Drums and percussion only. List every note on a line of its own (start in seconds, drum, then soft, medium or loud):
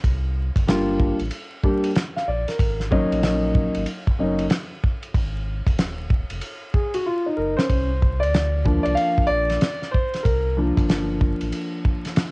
0.04 kick medium
0.04 ride medium
0.56 kick medium
0.56 ride medium
0.68 snare loud
0.68 hi-hat pedal medium
0.68 ride medium
1.00 kick medium
1.20 ride medium
1.31 ride medium
1.64 kick medium
1.84 ride medium
1.95 snare loud
1.95 hi-hat pedal medium
1.95 ride medium
2.17 snare soft
2.48 snare soft
2.48 ride soft
2.59 kick medium
2.59 ride medium
2.80 snare soft
2.92 kick medium
3.12 ride medium
3.23 snare loud
3.23 hi-hat pedal medium
3.23 ride medium
3.55 kick loud
3.75 ride medium
3.86 ride medium
4.07 kick medium
4.39 ride medium
4.50 snare loud
4.50 hi-hat pedal soft
4.50 ride medium
4.84 kick medium
5.03 ride medium
5.14 kick loud
5.14 ride medium
5.67 kick medium
5.67 ride medium
5.79 snare loud
5.79 hi-hat pedal medium
5.79 ride medium
6.10 kick loud
6.30 ride medium
6.41 ride medium
6.74 kick medium
6.94 ride medium
7.59 snare medium
7.70 kick medium
7.70 ride medium
8.02 kick medium
8.23 ride medium
8.34 snare loud
8.34 hi-hat pedal medium
8.34 ride medium
8.66 kick loud
8.85 ride medium
8.97 ride medium
9.18 kick medium
9.50 snare soft
9.50 ride medium
9.61 snare medium
9.61 hi-hat pedal medium
9.61 ride medium
9.82 snare soft
9.94 kick medium
10.14 snare soft
10.14 ride medium
10.25 kick medium
10.25 ride medium
10.77 kick medium
10.77 ride medium
10.89 snare loud
10.89 hi-hat pedal medium
10.89 ride medium
11.21 kick loud
11.41 ride medium
11.52 ride medium
11.85 kick medium
12.05 snare soft
12.05 ride medium
12.16 snare loud
12.16 hi-hat pedal medium
12.16 ride medium